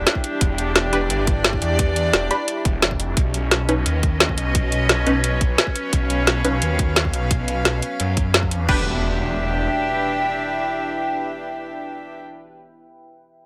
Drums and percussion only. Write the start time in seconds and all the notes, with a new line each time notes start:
0.07 snare, closed hi-hat
0.15 kick
0.24 closed hi-hat
0.41 kick, closed hi-hat
0.58 closed hi-hat
0.76 snare, closed hi-hat
0.93 closed hi-hat
1.10 closed hi-hat
1.27 kick, closed hi-hat
1.44 snare, closed hi-hat
1.53 kick
1.62 closed hi-hat
1.79 kick, closed hi-hat
1.96 closed hi-hat
2.13 snare, closed hi-hat
2.31 closed hi-hat
2.48 closed hi-hat
2.65 kick, closed hi-hat
2.82 snare, closed hi-hat
2.91 kick
3.00 closed hi-hat
3.17 kick, closed hi-hat
3.34 closed hi-hat
3.51 snare, closed hi-hat
3.69 closed hi-hat
3.86 closed hi-hat
4.03 kick, closed hi-hat
4.20 snare, closed hi-hat
4.29 kick
4.38 closed hi-hat
4.55 kick, closed hi-hat
4.72 closed hi-hat
4.89 snare, closed hi-hat
5.07 closed hi-hat
5.24 closed hi-hat
5.41 kick, closed hi-hat
5.58 snare, closed hi-hat
5.67 kick
5.76 closed hi-hat
5.93 kick, closed hi-hat
6.10 closed hi-hat
6.27 snare, closed hi-hat
6.45 closed hi-hat
6.62 closed hi-hat
6.79 kick, closed hi-hat
6.96 snare, closed hi-hat
7.05 kick
7.14 closed hi-hat
7.31 kick, closed hi-hat
7.48 closed hi-hat
7.65 snare, closed hi-hat
7.82 closed hi-hat
8.00 closed hi-hat
8.17 kick, closed hi-hat
8.34 snare, closed hi-hat
8.43 kick
8.51 closed hi-hat
8.69 kick, crash